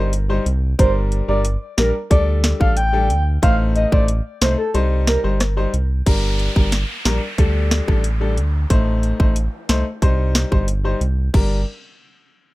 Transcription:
Already playing: G1 G3 D#4 C5
0.13 closed hi-hat
0.29 G3 D#4 C5
0.46 C2, closed hi-hat
0.79 G1 G3 D4 A#4 C5, kick, closed hi-hat
1.12 closed hi-hat
1.28 G1 G3 D4 A#4 D5
1.45 closed hi-hat
1.77 A#1 G3 D4 A#4, snare, closed hi-hat
2.10 D2 G3 D4 A4 D5, kick, closed hi-hat
2.44 snare, closed hi-hat
2.60 A1 G3 D4 A4 F5, kick
2.77 G5, closed hi-hat
2.93 G3 D4 A4
3.10 D2, closed hi-hat
3.42 A1 A3 D#4 C5 F5, kick, closed hi-hat
3.76 D#5, closed hi-hat
3.92 A1 A3 D#4 C5 D5, kick
4.08 closed hi-hat
4.41 C2 A3 D#4 C5, snare, closed hi-hat
4.58 A4
4.74 C2 G3 D#4 C5, closed hi-hat
5.07 A#4, snare, closed hi-hat
5.24 G1 G3 D#4 C5
5.40 cross-stick, snare, closed hi-hat
5.57 G3 D#4 C5
5.74 C2, closed hi-hat
6.06 G1 G3 D4 A#4, kick, closed hi-hat, crash, downlifter
6.39 closed hi-hat
6.56 G1 G3 D4 A#4, kick
6.72 snare, closed hi-hat
7.05 A#1 G3 D4 A#4, snare, closed hi-hat
7.38 D2 G3 D4 A4, kick, closed hi-hat
7.71 snare, closed hi-hat
7.87 A1 G3 D4 A4, kick
8.04 closed hi-hat
8.21 G3 D4 A4
8.37 D2, closed hi-hat
8.70 A1 A3 D#4 C5, kick, closed hi-hat
9.03 closed hi-hat
9.20 A1 A3 D#4 C5, kick
9.36 closed hi-hat
9.69 C2 A3 D#4 C5, snare, closed hi-hat
10.02 C2 G3 D#4 C5, kick, closed hi-hat
10.35 snare, closed hi-hat
10.51 G1 G3 D#4 C5, kick
10.68 closed hi-hat
10.84 G3 D#4 C5
11.01 C2, closed hi-hat
11.34 G1 G3 D4 A#4, kick, crash

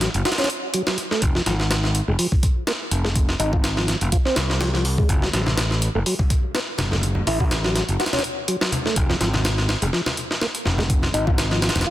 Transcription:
0.01 F#3, snare, closed hi-hat
0.14 F#1, closed hi-hat
0.25 F#4, snare, closed hi-hat
0.32 snare, closed hi-hat
0.38 C#4, snare, closed hi-hat
0.44 snare, closed hi-hat
0.50 closed hi-hat
0.74 F#3, closed hi-hat
0.87 F#3, snare
0.98 closed hi-hat
1.11 A3, snare
1.22 F1, kick, closed hi-hat
1.35 F3, snare
1.46 G#1 F3, snare, closed hi-hat
1.60 snare
1.71 snare, closed hi-hat
1.84 snare
1.95 closed hi-hat
2.08 F1 G#3
2.19 F3, open hi-hat
2.32 kick
2.43 kick, closed hi-hat
2.67 A#3, snare, closed hi-hat
2.91 F1, closed hi-hat
3.04 G#3, snare
3.16 kick, closed hi-hat
3.29 snare
3.39 G#1 D#4, closed hi-hat
3.53 F4, kick
3.64 snare, closed hi-hat
3.77 F3, snare
3.88 F3, snare, closed hi-hat
4.01 F1, closed hi-hat
4.12 F4, kick, closed hi-hat
4.25 C4, snare
4.36 C2, snare, closed hi-hat
4.50 snare
4.61 F3, snare, closed hi-hat
4.74 F3, snare
4.85 open hi-hat
4.98 G#3, kick
5.09 F#1, kick, closed hi-hat
5.22 F#3, snare, low conga
5.33 A1 F#3, snare, closed hi-hat
5.46 snare, high conga
5.57 snare, closed hi-hat
5.71 snare
5.82 closed hi-hat
5.95 F#1 A3
6.06 F#3, open hi-hat
6.19 kick, high conga
6.30 kick, closed hi-hat
6.55 B3, snare, closed hi-hat
6.78 F#1, snare, closed hi-hat, high conga
6.92 A3, snare, low conga
7.03 closed hi-hat
7.15 low conga
7.27 A1 E4, open hi-hat
7.40 F#4, kick, high conga
7.51 snare, closed hi-hat
7.64 F#3, snare
7.75 F#3, snare, closed hi-hat
7.89 F#1, closed hi-hat
8.00 F#4, snare, closed hi-hat
8.06 snare, closed hi-hat
8.13 C#4, snare, closed hi-hat, high conga
8.19 snare, closed hi-hat
8.24 closed hi-hat
8.48 F#3, closed hi-hat
8.61 F#3, snare
8.72 closed hi-hat, high conga
8.85 A3, snare
8.96 F1, kick, closed hi-hat
9.10 F3, snare, low conga
9.20 G#1 F3, snare, closed hi-hat
9.34 snare, high conga
9.45 snare, closed hi-hat
9.58 snare
9.69 snare
9.82 F1 G#3, closed hi-hat
9.93 F3, snare
10.06 snare, high conga
10.17 closed hi-hat
10.31 snare
10.41 A#3, snare
10.55 closed hi-hat
10.65 F1, snare, high conga
10.78 G#3, snare, low conga
10.90 kick, closed hi-hat
11.02 snare, low conga
11.14 G#1 D#4, closed hi-hat
11.27 F4, kick, high conga
11.38 snare, closed hi-hat
11.51 F3, snare
11.62 F3, snare, closed hi-hat
11.69 snare, closed hi-hat
11.75 F1, snare, closed hi-hat, low conga
11.81 snare, closed hi-hat
11.86 F4

